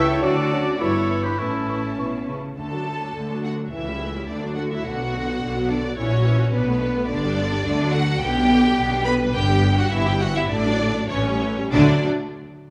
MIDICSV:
0, 0, Header, 1, 12, 480
1, 0, Start_track
1, 0, Key_signature, 2, "major"
1, 0, Tempo, 583090
1, 187, Time_signature, 2, 2, 24, 8
1, 3071, Tempo, 562852
1, 8351, Tempo, 602410
1, 10565, End_track
2, 0, Start_track
2, 0, Title_t, "Flute section"
2, 0, Program_c, 0, 73
2, 178, Note_on_c, 0, 81, 62
2, 233, Note_off_c, 0, 81, 0
2, 413, Note_on_c, 0, 81, 53
2, 469, Note_off_c, 0, 81, 0
2, 652, Note_on_c, 0, 83, 53
2, 708, Note_off_c, 0, 83, 0
2, 892, Note_on_c, 0, 83, 44
2, 949, Note_off_c, 0, 83, 0
2, 1151, Note_on_c, 0, 85, 45
2, 1207, Note_off_c, 0, 85, 0
2, 1391, Note_on_c, 0, 85, 38
2, 1447, Note_off_c, 0, 85, 0
2, 1633, Note_on_c, 0, 85, 40
2, 1689, Note_off_c, 0, 85, 0
2, 1869, Note_on_c, 0, 85, 34
2, 1925, Note_off_c, 0, 85, 0
2, 10565, End_track
3, 0, Start_track
3, 0, Title_t, "Violin section"
3, 0, Program_c, 1, 48
3, 0, Note_on_c, 1, 85, 61
3, 168, Note_off_c, 1, 85, 0
3, 178, Note_on_c, 1, 81, 62
3, 626, Note_off_c, 1, 81, 0
3, 659, Note_on_c, 1, 83, 52
3, 1147, Note_off_c, 1, 83, 0
3, 1156, Note_on_c, 1, 81, 46
3, 1961, Note_off_c, 1, 81, 0
3, 2128, Note_on_c, 1, 81, 66
3, 2804, Note_off_c, 1, 81, 0
3, 2835, Note_on_c, 1, 78, 66
3, 2900, Note_off_c, 1, 78, 0
3, 3057, Note_on_c, 1, 76, 68
3, 3539, Note_off_c, 1, 76, 0
3, 3545, Note_on_c, 1, 74, 58
3, 3775, Note_on_c, 1, 78, 75
3, 3787, Note_off_c, 1, 74, 0
3, 3828, Note_off_c, 1, 78, 0
3, 3910, Note_on_c, 1, 76, 67
3, 4026, Note_on_c, 1, 78, 80
3, 4033, Note_off_c, 1, 76, 0
3, 4751, Note_off_c, 1, 78, 0
3, 4754, Note_on_c, 1, 74, 84
3, 4987, Note_on_c, 1, 73, 82
3, 4993, Note_off_c, 1, 74, 0
3, 5452, Note_on_c, 1, 71, 81
3, 5457, Note_off_c, 1, 73, 0
3, 5929, Note_off_c, 1, 71, 0
3, 5935, Note_on_c, 1, 74, 101
3, 6638, Note_off_c, 1, 74, 0
3, 6639, Note_on_c, 1, 78, 107
3, 6887, Note_off_c, 1, 78, 0
3, 6898, Note_on_c, 1, 79, 107
3, 7606, Note_on_c, 1, 83, 113
3, 7618, Note_off_c, 1, 79, 0
3, 7674, Note_off_c, 1, 83, 0
3, 7847, Note_on_c, 1, 79, 105
3, 8213, Note_off_c, 1, 79, 0
3, 8234, Note_on_c, 1, 78, 99
3, 8345, Note_on_c, 1, 76, 96
3, 8354, Note_off_c, 1, 78, 0
3, 8464, Note_off_c, 1, 76, 0
3, 8473, Note_on_c, 1, 79, 99
3, 8576, Note_on_c, 1, 78, 113
3, 8586, Note_off_c, 1, 79, 0
3, 8696, Note_off_c, 1, 78, 0
3, 8697, Note_on_c, 1, 76, 96
3, 8812, Note_on_c, 1, 74, 110
3, 8815, Note_off_c, 1, 76, 0
3, 9281, Note_on_c, 1, 73, 85
3, 9282, Note_off_c, 1, 74, 0
3, 9769, Note_off_c, 1, 73, 0
3, 9780, Note_on_c, 1, 74, 98
3, 10052, Note_off_c, 1, 74, 0
3, 10565, End_track
4, 0, Start_track
4, 0, Title_t, "Trumpet section"
4, 0, Program_c, 2, 61
4, 81, Note_on_c, 2, 73, 82
4, 187, Note_on_c, 2, 74, 96
4, 190, Note_off_c, 2, 73, 0
4, 663, Note_off_c, 2, 74, 0
4, 665, Note_on_c, 2, 73, 80
4, 1028, Note_off_c, 2, 73, 0
4, 1034, Note_on_c, 2, 71, 64
4, 1150, Note_on_c, 2, 69, 62
4, 1153, Note_off_c, 2, 71, 0
4, 1631, Note_off_c, 2, 69, 0
4, 10565, End_track
5, 0, Start_track
5, 0, Title_t, "Oboe"
5, 0, Program_c, 3, 68
5, 68, Note_on_c, 3, 69, 74
5, 177, Note_off_c, 3, 69, 0
5, 182, Note_on_c, 3, 69, 74
5, 487, Note_off_c, 3, 69, 0
5, 651, Note_on_c, 3, 69, 65
5, 1013, Note_on_c, 3, 67, 57
5, 1026, Note_off_c, 3, 69, 0
5, 1143, Note_on_c, 3, 64, 52
5, 1155, Note_off_c, 3, 67, 0
5, 1637, Note_off_c, 3, 64, 0
5, 10565, End_track
6, 0, Start_track
6, 0, Title_t, "Clarinet"
6, 0, Program_c, 4, 71
6, 75, Note_on_c, 4, 64, 71
6, 127, Note_off_c, 4, 64, 0
6, 190, Note_on_c, 4, 66, 76
6, 491, Note_off_c, 4, 66, 0
6, 667, Note_on_c, 4, 64, 66
6, 1003, Note_off_c, 4, 64, 0
6, 1025, Note_on_c, 4, 62, 53
6, 1081, Note_off_c, 4, 62, 0
6, 1146, Note_on_c, 4, 61, 53
6, 1629, Note_off_c, 4, 61, 0
6, 10565, End_track
7, 0, Start_track
7, 0, Title_t, "French horn section"
7, 0, Program_c, 5, 60
7, 0, Note_on_c, 5, 64, 72
7, 175, Note_off_c, 5, 64, 0
7, 180, Note_on_c, 5, 66, 69
7, 656, Note_on_c, 5, 64, 65
7, 660, Note_off_c, 5, 66, 0
7, 1137, Note_off_c, 5, 64, 0
7, 1147, Note_on_c, 5, 61, 46
7, 1869, Note_off_c, 5, 61, 0
7, 10565, End_track
8, 0, Start_track
8, 0, Title_t, "Violin section"
8, 0, Program_c, 6, 48
8, 0, Note_on_c, 6, 69, 69
8, 180, Note_off_c, 6, 69, 0
8, 195, Note_on_c, 6, 66, 68
8, 635, Note_off_c, 6, 66, 0
8, 657, Note_on_c, 6, 64, 64
8, 1147, Note_off_c, 6, 64, 0
8, 1157, Note_on_c, 6, 64, 51
8, 1946, Note_off_c, 6, 64, 0
8, 2128, Note_on_c, 6, 69, 61
8, 2804, Note_off_c, 6, 69, 0
8, 2830, Note_on_c, 6, 66, 57
8, 2896, Note_off_c, 6, 66, 0
8, 3080, Note_on_c, 6, 64, 64
8, 3551, Note_off_c, 6, 64, 0
8, 3556, Note_on_c, 6, 62, 61
8, 3793, Note_on_c, 6, 66, 62
8, 3798, Note_off_c, 6, 62, 0
8, 3916, Note_off_c, 6, 66, 0
8, 3924, Note_on_c, 6, 64, 63
8, 4040, Note_off_c, 6, 64, 0
8, 4041, Note_on_c, 6, 66, 76
8, 4747, Note_on_c, 6, 62, 67
8, 4758, Note_off_c, 6, 66, 0
8, 4815, Note_off_c, 6, 62, 0
8, 4994, Note_on_c, 6, 61, 77
8, 5460, Note_off_c, 6, 61, 0
8, 5480, Note_on_c, 6, 59, 82
8, 5936, Note_on_c, 6, 62, 88
8, 5953, Note_off_c, 6, 59, 0
8, 6639, Note_off_c, 6, 62, 0
8, 6658, Note_on_c, 6, 66, 87
8, 6897, Note_off_c, 6, 66, 0
8, 6897, Note_on_c, 6, 67, 102
8, 7604, Note_off_c, 6, 67, 0
8, 7615, Note_on_c, 6, 71, 96
8, 7855, Note_on_c, 6, 67, 98
8, 7858, Note_off_c, 6, 71, 0
8, 8219, Note_on_c, 6, 66, 86
8, 8225, Note_off_c, 6, 67, 0
8, 8344, Note_off_c, 6, 66, 0
8, 8344, Note_on_c, 6, 64, 99
8, 8461, Note_off_c, 6, 64, 0
8, 8469, Note_on_c, 6, 67, 89
8, 8569, Note_on_c, 6, 66, 84
8, 8584, Note_off_c, 6, 67, 0
8, 8619, Note_off_c, 6, 66, 0
8, 8684, Note_on_c, 6, 64, 84
8, 8796, Note_on_c, 6, 62, 97
8, 8806, Note_off_c, 6, 64, 0
8, 9274, Note_off_c, 6, 62, 0
8, 9289, Note_on_c, 6, 61, 90
8, 9773, Note_off_c, 6, 61, 0
8, 9779, Note_on_c, 6, 62, 95
8, 10051, Note_off_c, 6, 62, 0
8, 10565, End_track
9, 0, Start_track
9, 0, Title_t, "Viola section"
9, 0, Program_c, 7, 48
9, 0, Note_on_c, 7, 64, 71
9, 190, Note_off_c, 7, 64, 0
9, 193, Note_on_c, 7, 62, 65
9, 411, Note_off_c, 7, 62, 0
9, 431, Note_on_c, 7, 61, 59
9, 659, Note_on_c, 7, 59, 58
9, 667, Note_off_c, 7, 61, 0
9, 1148, Note_off_c, 7, 59, 0
9, 1154, Note_on_c, 7, 61, 49
9, 1960, Note_off_c, 7, 61, 0
9, 2114, Note_on_c, 7, 50, 41
9, 2114, Note_on_c, 7, 57, 40
9, 2229, Note_off_c, 7, 57, 0
9, 2230, Note_off_c, 7, 50, 0
9, 2233, Note_on_c, 7, 54, 40
9, 2233, Note_on_c, 7, 62, 37
9, 2351, Note_on_c, 7, 57, 38
9, 2352, Note_on_c, 7, 50, 38
9, 2357, Note_off_c, 7, 54, 0
9, 2357, Note_off_c, 7, 62, 0
9, 2475, Note_off_c, 7, 57, 0
9, 2476, Note_off_c, 7, 50, 0
9, 2478, Note_on_c, 7, 54, 38
9, 2478, Note_on_c, 7, 62, 40
9, 2598, Note_off_c, 7, 54, 0
9, 2598, Note_off_c, 7, 62, 0
9, 2598, Note_on_c, 7, 50, 42
9, 2599, Note_on_c, 7, 57, 41
9, 2709, Note_off_c, 7, 50, 0
9, 2709, Note_off_c, 7, 57, 0
9, 2714, Note_on_c, 7, 54, 38
9, 2715, Note_on_c, 7, 62, 38
9, 2829, Note_on_c, 7, 50, 42
9, 2832, Note_on_c, 7, 57, 41
9, 2834, Note_off_c, 7, 54, 0
9, 2834, Note_off_c, 7, 62, 0
9, 2942, Note_on_c, 7, 54, 39
9, 2944, Note_on_c, 7, 62, 39
9, 2950, Note_off_c, 7, 50, 0
9, 2952, Note_off_c, 7, 57, 0
9, 3066, Note_off_c, 7, 54, 0
9, 3067, Note_off_c, 7, 62, 0
9, 3068, Note_on_c, 7, 52, 42
9, 3069, Note_on_c, 7, 57, 43
9, 3178, Note_on_c, 7, 61, 44
9, 3183, Note_off_c, 7, 52, 0
9, 3183, Note_off_c, 7, 57, 0
9, 3183, Note_on_c, 7, 55, 42
9, 3306, Note_on_c, 7, 57, 44
9, 3307, Note_off_c, 7, 61, 0
9, 3307, Note_on_c, 7, 52, 43
9, 3309, Note_off_c, 7, 55, 0
9, 3427, Note_on_c, 7, 55, 43
9, 3430, Note_on_c, 7, 61, 43
9, 3432, Note_off_c, 7, 52, 0
9, 3432, Note_off_c, 7, 57, 0
9, 3544, Note_on_c, 7, 50, 47
9, 3544, Note_on_c, 7, 57, 48
9, 3552, Note_off_c, 7, 55, 0
9, 3553, Note_off_c, 7, 61, 0
9, 3662, Note_off_c, 7, 50, 0
9, 3662, Note_off_c, 7, 57, 0
9, 3665, Note_on_c, 7, 54, 42
9, 3666, Note_on_c, 7, 62, 45
9, 3789, Note_on_c, 7, 50, 49
9, 3791, Note_on_c, 7, 57, 47
9, 3792, Note_off_c, 7, 54, 0
9, 3792, Note_off_c, 7, 62, 0
9, 3909, Note_on_c, 7, 62, 46
9, 3911, Note_on_c, 7, 54, 43
9, 3914, Note_off_c, 7, 50, 0
9, 3915, Note_off_c, 7, 57, 0
9, 4021, Note_off_c, 7, 62, 0
9, 4031, Note_on_c, 7, 62, 48
9, 4033, Note_on_c, 7, 50, 49
9, 4036, Note_off_c, 7, 54, 0
9, 4147, Note_off_c, 7, 62, 0
9, 4148, Note_off_c, 7, 50, 0
9, 4151, Note_on_c, 7, 59, 46
9, 4152, Note_on_c, 7, 54, 46
9, 4262, Note_on_c, 7, 50, 51
9, 4266, Note_on_c, 7, 62, 49
9, 4275, Note_off_c, 7, 59, 0
9, 4276, Note_off_c, 7, 54, 0
9, 4390, Note_on_c, 7, 59, 52
9, 4391, Note_off_c, 7, 50, 0
9, 4392, Note_on_c, 7, 54, 53
9, 4393, Note_off_c, 7, 62, 0
9, 4512, Note_on_c, 7, 50, 54
9, 4514, Note_off_c, 7, 59, 0
9, 4515, Note_off_c, 7, 54, 0
9, 4516, Note_on_c, 7, 62, 56
9, 4626, Note_off_c, 7, 50, 0
9, 4627, Note_on_c, 7, 54, 50
9, 4628, Note_on_c, 7, 59, 51
9, 4629, Note_off_c, 7, 62, 0
9, 4748, Note_on_c, 7, 50, 53
9, 4752, Note_off_c, 7, 54, 0
9, 4752, Note_off_c, 7, 59, 0
9, 4753, Note_on_c, 7, 62, 55
9, 4863, Note_on_c, 7, 59, 50
9, 4866, Note_on_c, 7, 54, 52
9, 4872, Note_off_c, 7, 50, 0
9, 4874, Note_off_c, 7, 62, 0
9, 4983, Note_on_c, 7, 64, 57
9, 4984, Note_on_c, 7, 52, 54
9, 4988, Note_off_c, 7, 59, 0
9, 4990, Note_off_c, 7, 54, 0
9, 5098, Note_on_c, 7, 54, 54
9, 5099, Note_off_c, 7, 52, 0
9, 5099, Note_off_c, 7, 64, 0
9, 5103, Note_on_c, 7, 66, 57
9, 5221, Note_on_c, 7, 52, 58
9, 5222, Note_on_c, 7, 64, 55
9, 5224, Note_off_c, 7, 54, 0
9, 5226, Note_off_c, 7, 66, 0
9, 5337, Note_on_c, 7, 54, 56
9, 5341, Note_on_c, 7, 66, 56
9, 5345, Note_off_c, 7, 52, 0
9, 5345, Note_off_c, 7, 64, 0
9, 5460, Note_on_c, 7, 59, 57
9, 5460, Note_on_c, 7, 62, 60
9, 5463, Note_off_c, 7, 54, 0
9, 5465, Note_off_c, 7, 66, 0
9, 5566, Note_off_c, 7, 59, 0
9, 5576, Note_off_c, 7, 62, 0
9, 5576, Note_on_c, 7, 59, 58
9, 5577, Note_on_c, 7, 57, 54
9, 5689, Note_off_c, 7, 59, 0
9, 5699, Note_on_c, 7, 59, 58
9, 5700, Note_on_c, 7, 62, 60
9, 5703, Note_off_c, 7, 57, 0
9, 5815, Note_off_c, 7, 59, 0
9, 5824, Note_off_c, 7, 62, 0
9, 5825, Note_on_c, 7, 59, 56
9, 5828, Note_on_c, 7, 57, 58
9, 5930, Note_off_c, 7, 59, 0
9, 5940, Note_on_c, 7, 59, 68
9, 5941, Note_on_c, 7, 50, 60
9, 5947, Note_off_c, 7, 57, 0
9, 6054, Note_off_c, 7, 59, 0
9, 6055, Note_off_c, 7, 50, 0
9, 6068, Note_on_c, 7, 55, 62
9, 6069, Note_on_c, 7, 62, 61
9, 6184, Note_on_c, 7, 50, 61
9, 6184, Note_on_c, 7, 59, 62
9, 6186, Note_off_c, 7, 55, 0
9, 6186, Note_off_c, 7, 62, 0
9, 6303, Note_off_c, 7, 50, 0
9, 6303, Note_off_c, 7, 59, 0
9, 6312, Note_on_c, 7, 55, 59
9, 6316, Note_on_c, 7, 62, 63
9, 6423, Note_on_c, 7, 57, 64
9, 6426, Note_off_c, 7, 55, 0
9, 6426, Note_off_c, 7, 57, 0
9, 6426, Note_on_c, 7, 57, 69
9, 6428, Note_off_c, 7, 62, 0
9, 6534, Note_off_c, 7, 57, 0
9, 6546, Note_on_c, 7, 62, 61
9, 6547, Note_on_c, 7, 54, 62
9, 6661, Note_off_c, 7, 62, 0
9, 6661, Note_on_c, 7, 57, 68
9, 6662, Note_off_c, 7, 54, 0
9, 6779, Note_off_c, 7, 57, 0
9, 6780, Note_on_c, 7, 54, 62
9, 6781, Note_on_c, 7, 62, 65
9, 6893, Note_on_c, 7, 50, 67
9, 6897, Note_on_c, 7, 59, 70
9, 6898, Note_off_c, 7, 54, 0
9, 6899, Note_off_c, 7, 62, 0
9, 7006, Note_off_c, 7, 50, 0
9, 7008, Note_off_c, 7, 59, 0
9, 7018, Note_on_c, 7, 62, 67
9, 7020, Note_on_c, 7, 55, 64
9, 7130, Note_on_c, 7, 59, 61
9, 7132, Note_on_c, 7, 50, 67
9, 7137, Note_off_c, 7, 62, 0
9, 7138, Note_off_c, 7, 55, 0
9, 7254, Note_off_c, 7, 59, 0
9, 7255, Note_off_c, 7, 50, 0
9, 7260, Note_on_c, 7, 62, 67
9, 7261, Note_on_c, 7, 55, 67
9, 7378, Note_on_c, 7, 50, 71
9, 7379, Note_off_c, 7, 62, 0
9, 7379, Note_on_c, 7, 59, 73
9, 7380, Note_off_c, 7, 55, 0
9, 7487, Note_on_c, 7, 55, 66
9, 7489, Note_on_c, 7, 62, 66
9, 7490, Note_off_c, 7, 50, 0
9, 7490, Note_off_c, 7, 59, 0
9, 7611, Note_on_c, 7, 50, 69
9, 7611, Note_on_c, 7, 59, 63
9, 7612, Note_off_c, 7, 55, 0
9, 7614, Note_off_c, 7, 62, 0
9, 7727, Note_on_c, 7, 55, 66
9, 7728, Note_on_c, 7, 62, 64
9, 7735, Note_off_c, 7, 50, 0
9, 7735, Note_off_c, 7, 59, 0
9, 7853, Note_off_c, 7, 55, 0
9, 7854, Note_off_c, 7, 62, 0
9, 7856, Note_on_c, 7, 59, 67
9, 7857, Note_on_c, 7, 50, 69
9, 7968, Note_on_c, 7, 55, 64
9, 7970, Note_off_c, 7, 59, 0
9, 7971, Note_off_c, 7, 50, 0
9, 7972, Note_on_c, 7, 62, 65
9, 8091, Note_on_c, 7, 50, 66
9, 8092, Note_on_c, 7, 59, 66
9, 8097, Note_off_c, 7, 55, 0
9, 8099, Note_off_c, 7, 62, 0
9, 8211, Note_on_c, 7, 55, 65
9, 8212, Note_on_c, 7, 62, 67
9, 8220, Note_off_c, 7, 50, 0
9, 8221, Note_off_c, 7, 59, 0
9, 8338, Note_on_c, 7, 52, 70
9, 8341, Note_on_c, 7, 59, 70
9, 8343, Note_off_c, 7, 55, 0
9, 8343, Note_off_c, 7, 62, 0
9, 8452, Note_off_c, 7, 52, 0
9, 8454, Note_off_c, 7, 59, 0
9, 8459, Note_on_c, 7, 64, 63
9, 8462, Note_on_c, 7, 55, 65
9, 8579, Note_off_c, 7, 64, 0
9, 8579, Note_on_c, 7, 59, 64
9, 8580, Note_off_c, 7, 55, 0
9, 8581, Note_on_c, 7, 52, 68
9, 8694, Note_on_c, 7, 55, 64
9, 8696, Note_on_c, 7, 64, 66
9, 8697, Note_off_c, 7, 59, 0
9, 8698, Note_off_c, 7, 52, 0
9, 8813, Note_off_c, 7, 55, 0
9, 8814, Note_off_c, 7, 64, 0
9, 8819, Note_on_c, 7, 57, 74
9, 8820, Note_on_c, 7, 50, 72
9, 8927, Note_off_c, 7, 57, 0
9, 8928, Note_off_c, 7, 50, 0
9, 8935, Note_on_c, 7, 62, 67
9, 8939, Note_on_c, 7, 54, 67
9, 9053, Note_off_c, 7, 62, 0
9, 9055, Note_off_c, 7, 54, 0
9, 9056, Note_on_c, 7, 50, 64
9, 9059, Note_on_c, 7, 57, 62
9, 9174, Note_off_c, 7, 50, 0
9, 9176, Note_off_c, 7, 57, 0
9, 9179, Note_on_c, 7, 54, 69
9, 9179, Note_on_c, 7, 62, 66
9, 9295, Note_on_c, 7, 52, 72
9, 9297, Note_off_c, 7, 54, 0
9, 9297, Note_off_c, 7, 62, 0
9, 9297, Note_on_c, 7, 57, 67
9, 9408, Note_off_c, 7, 52, 0
9, 9409, Note_off_c, 7, 57, 0
9, 9413, Note_on_c, 7, 61, 63
9, 9415, Note_on_c, 7, 55, 62
9, 9535, Note_on_c, 7, 57, 63
9, 9536, Note_on_c, 7, 52, 65
9, 9539, Note_off_c, 7, 61, 0
9, 9540, Note_off_c, 7, 55, 0
9, 9661, Note_off_c, 7, 57, 0
9, 9662, Note_off_c, 7, 52, 0
9, 9665, Note_on_c, 7, 55, 61
9, 9666, Note_on_c, 7, 61, 59
9, 9786, Note_off_c, 7, 55, 0
9, 9786, Note_off_c, 7, 61, 0
9, 9794, Note_on_c, 7, 54, 93
9, 9794, Note_on_c, 7, 57, 90
9, 10059, Note_off_c, 7, 54, 0
9, 10059, Note_off_c, 7, 57, 0
9, 10565, End_track
10, 0, Start_track
10, 0, Title_t, "Bassoon"
10, 0, Program_c, 8, 70
10, 183, Note_on_c, 8, 54, 65
10, 291, Note_off_c, 8, 54, 0
10, 431, Note_on_c, 8, 54, 54
10, 537, Note_off_c, 8, 54, 0
10, 669, Note_on_c, 8, 52, 51
10, 776, Note_off_c, 8, 52, 0
10, 911, Note_on_c, 8, 52, 45
10, 1020, Note_off_c, 8, 52, 0
10, 1143, Note_on_c, 8, 52, 46
10, 1255, Note_off_c, 8, 52, 0
10, 1390, Note_on_c, 8, 52, 41
10, 1502, Note_off_c, 8, 52, 0
10, 1635, Note_on_c, 8, 52, 41
10, 1746, Note_off_c, 8, 52, 0
10, 1880, Note_on_c, 8, 52, 38
10, 1989, Note_off_c, 8, 52, 0
10, 10565, End_track
11, 0, Start_track
11, 0, Title_t, "Cello section"
11, 0, Program_c, 10, 48
11, 0, Note_on_c, 10, 49, 70
11, 180, Note_off_c, 10, 49, 0
11, 194, Note_on_c, 10, 50, 67
11, 634, Note_off_c, 10, 50, 0
11, 668, Note_on_c, 10, 43, 59
11, 1149, Note_on_c, 10, 45, 50
11, 1152, Note_off_c, 10, 43, 0
11, 1591, Note_off_c, 10, 45, 0
11, 1636, Note_on_c, 10, 47, 52
11, 1865, Note_off_c, 10, 47, 0
11, 1882, Note_on_c, 10, 49, 45
11, 2122, Note_on_c, 10, 38, 50
11, 2124, Note_off_c, 10, 49, 0
11, 2541, Note_off_c, 10, 38, 0
11, 2595, Note_on_c, 10, 38, 52
11, 3013, Note_off_c, 10, 38, 0
11, 3061, Note_on_c, 10, 37, 54
11, 3494, Note_off_c, 10, 37, 0
11, 3546, Note_on_c, 10, 38, 59
11, 3977, Note_off_c, 10, 38, 0
11, 4027, Note_on_c, 10, 47, 59
11, 4456, Note_off_c, 10, 47, 0
11, 4506, Note_on_c, 10, 47, 61
11, 4932, Note_off_c, 10, 47, 0
11, 4986, Note_on_c, 10, 46, 71
11, 5409, Note_off_c, 10, 46, 0
11, 5466, Note_on_c, 10, 47, 74
11, 5890, Note_off_c, 10, 47, 0
11, 5940, Note_on_c, 10, 43, 78
11, 6362, Note_off_c, 10, 43, 0
11, 6413, Note_on_c, 10, 50, 78
11, 6836, Note_off_c, 10, 50, 0
11, 6890, Note_on_c, 10, 47, 83
11, 7317, Note_off_c, 10, 47, 0
11, 7366, Note_on_c, 10, 47, 84
11, 7796, Note_off_c, 10, 47, 0
11, 7850, Note_on_c, 10, 43, 86
11, 8287, Note_off_c, 10, 43, 0
11, 8344, Note_on_c, 10, 43, 86
11, 8758, Note_off_c, 10, 43, 0
11, 8809, Note_on_c, 10, 45, 89
11, 9233, Note_off_c, 10, 45, 0
11, 9291, Note_on_c, 10, 45, 78
11, 9726, Note_off_c, 10, 45, 0
11, 9782, Note_on_c, 10, 50, 99
11, 10053, Note_off_c, 10, 50, 0
11, 10565, End_track
12, 0, Start_track
12, 0, Title_t, "Double bass section"
12, 0, Program_c, 11, 48
12, 0, Note_on_c, 11, 37, 76
12, 178, Note_off_c, 11, 37, 0
12, 188, Note_on_c, 11, 38, 69
12, 631, Note_off_c, 11, 38, 0
12, 666, Note_on_c, 11, 31, 59
12, 1151, Note_off_c, 11, 31, 0
12, 1155, Note_on_c, 11, 33, 52
12, 1961, Note_off_c, 11, 33, 0
12, 2123, Note_on_c, 11, 38, 54
12, 2542, Note_off_c, 11, 38, 0
12, 2592, Note_on_c, 11, 38, 53
12, 3012, Note_off_c, 11, 38, 0
12, 3062, Note_on_c, 11, 37, 57
12, 3494, Note_off_c, 11, 37, 0
12, 3546, Note_on_c, 11, 38, 58
12, 3977, Note_off_c, 11, 38, 0
12, 4028, Note_on_c, 11, 35, 68
12, 4457, Note_off_c, 11, 35, 0
12, 4509, Note_on_c, 11, 35, 65
12, 4934, Note_off_c, 11, 35, 0
12, 4984, Note_on_c, 11, 34, 69
12, 5408, Note_off_c, 11, 34, 0
12, 5463, Note_on_c, 11, 35, 77
12, 5888, Note_off_c, 11, 35, 0
12, 5943, Note_on_c, 11, 31, 88
12, 6364, Note_off_c, 11, 31, 0
12, 6410, Note_on_c, 11, 38, 82
12, 6834, Note_off_c, 11, 38, 0
12, 6886, Note_on_c, 11, 35, 91
12, 7315, Note_off_c, 11, 35, 0
12, 7372, Note_on_c, 11, 35, 82
12, 7799, Note_off_c, 11, 35, 0
12, 7853, Note_on_c, 11, 31, 95
12, 8289, Note_off_c, 11, 31, 0
12, 8344, Note_on_c, 11, 31, 92
12, 8758, Note_off_c, 11, 31, 0
12, 8815, Note_on_c, 11, 33, 90
12, 9236, Note_off_c, 11, 33, 0
12, 9289, Note_on_c, 11, 33, 88
12, 9726, Note_off_c, 11, 33, 0
12, 9776, Note_on_c, 11, 38, 104
12, 10049, Note_off_c, 11, 38, 0
12, 10565, End_track
0, 0, End_of_file